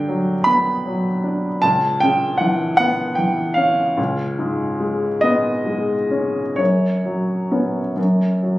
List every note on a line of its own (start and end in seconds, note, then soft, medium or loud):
0.00 1.58 G2 medium
0.00 0.32 D3 soft
0.00 0.46 G5 medium
0.08 0.70 F#3 soft
0.44 1.08 B3 soft
0.44 1.60 B5 medium
0.86 1.47 F#3 soft
1.24 1.62 D4 soft
1.62 3.95 C#2 soft
1.62 2.00 A5 medium
2.00 2.63 C#3 soft
2.00 2.39 G5 medium
2.38 3.02 E3 soft
2.38 2.76 F#5 medium
2.77 3.42 B3 soft
2.77 3.17 F#5 loud
3.15 3.82 E3 soft
3.15 3.56 G5 medium
3.54 3.98 C#4 soft
3.54 5.23 F5 medium
3.97 6.55 C#2 medium
4.39 5.07 G#2 soft
4.80 5.50 G#3 soft
5.21 5.94 B3 soft
5.21 6.58 D#5 medium
5.66 6.40 G#3 soft
6.11 6.59 C#4 soft
6.56 7.92 F#2 soft
6.56 8.59 C#5 medium
7.05 7.79 F#3 soft
7.52 7.93 B3 soft
7.52 7.93 C#4 soft
7.96 8.59 F#2 soft
8.43 8.59 F#3 soft